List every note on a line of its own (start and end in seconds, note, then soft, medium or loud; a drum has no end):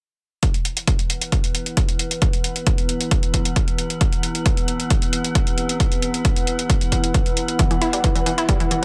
0.43 8.85 E3 medium
0.43 8.85 B3 medium
0.43 8.85 E4 medium
0.43 kick loud
0.43 closed hi-hat medium
0.54 closed hi-hat soft
0.64 8.85 F#5 medium
0.64 closed hi-hat medium
0.77 closed hi-hat medium
0.82 8.85 B4 medium
0.87 kick loud
0.87 closed hi-hat medium
0.99 closed hi-hat medium
1.10 closed hi-hat medium
1.21 closed hi-hat medium
1.32 kick loud
1.32 closed hi-hat medium
1.44 closed hi-hat medium
1.55 closed hi-hat medium
1.66 closed hi-hat medium
1.72 8.85 E6 medium
1.77 kick loud
1.77 closed hi-hat loud
1.89 closed hi-hat medium
1.99 closed hi-hat medium
2.11 closed hi-hat medium
2.22 kick loud
2.22 closed hi-hat medium
2.33 closed hi-hat medium
2.44 closed hi-hat medium
2.56 closed hi-hat medium
2.67 kick loud
2.67 closed hi-hat medium
2.78 closed hi-hat medium
2.89 closed hi-hat medium
3.01 closed hi-hat medium
3.11 kick loud
3.11 closed hi-hat medium
3.23 closed hi-hat medium
3.34 kick medium
3.34 closed hi-hat medium
3.45 closed hi-hat medium
3.56 kick loud
3.56 closed hi-hat loud
3.68 closed hi-hat medium
3.78 closed hi-hat medium
3.90 closed hi-hat medium
4.01 kick loud
4.01 closed hi-hat medium
4.13 closed hi-hat medium
4.23 closed hi-hat medium
4.35 closed hi-hat medium
4.46 kick loud
4.46 closed hi-hat medium
4.57 closed hi-hat medium
4.68 closed hi-hat medium
4.80 closed hi-hat soft
4.90 kick loud
4.90 closed hi-hat medium
5.02 closed hi-hat medium
5.13 closed hi-hat medium
5.24 closed hi-hat soft
5.35 kick loud
5.35 closed hi-hat medium
5.47 closed hi-hat soft
5.58 closed hi-hat medium
5.69 closed hi-hat medium
5.80 kick loud
5.80 closed hi-hat medium
5.92 closed hi-hat soft
6.02 closed hi-hat medium
6.14 closed hi-hat medium
6.25 kick loud
6.25 closed hi-hat medium
6.36 closed hi-hat medium
6.47 closed hi-hat medium
6.59 closed hi-hat soft
6.70 kick loud
6.70 closed hi-hat medium
6.81 closed hi-hat medium
6.92 kick medium
6.92 closed hi-hat medium
7.04 closed hi-hat medium
7.14 kick loud
7.14 closed hi-hat medium
7.26 closed hi-hat soft
7.37 closed hi-hat medium
7.48 closed hi-hat medium
7.59 7.63 E3 medium
7.59 kick loud
7.59 closed hi-hat medium
7.71 7.77 E3 medium
7.71 closed hi-hat soft
7.82 7.86 E4 loud
7.82 closed hi-hat medium
7.93 8.03 G3 medium
7.93 closed hi-hat medium
8.04 8.11 E3 medium
8.04 kick loud
8.04 closed hi-hat medium
8.15 8.20 E3 medium
8.15 closed hi-hat soft
8.26 8.33 E3 medium
8.26 closed hi-hat medium
8.38 8.42 E4 loud
8.38 closed hi-hat soft
8.49 8.59 G3 medium
8.49 kick loud
8.49 closed hi-hat medium
8.60 8.67 E3 medium
8.60 closed hi-hat soft
8.71 8.75 E3 medium
8.71 closed hi-hat medium